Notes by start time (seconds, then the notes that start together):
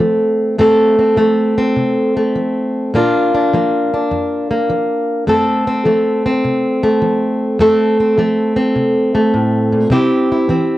Already playing: A3 C4 A4
0.00 F3
0.58 F2 A3 C4 A4
0.99 C4
1.16 F3 A3
1.58 C4
1.76 C3
2.17 A3
2.35 F3
2.94 A#2 A#3 D4 F4
3.35 D4
3.54 F3 A#3
3.94 D4
4.11 F2
4.51 A#3
4.70 F3
5.27 F2 A3 C4 A4
5.67 C4
5.85 F3 A3
6.26 C4
6.45 C3
6.83 A3
7.02 F3
7.59 F2 A3 C4 A4
8.00 C4
8.18 F3 A3
8.56 C4
8.76 C3
9.15 A3
9.34 A2
9.72 A#2
9.90 C3 C4 E4 G4
10.32 E4
10.49 E3 C4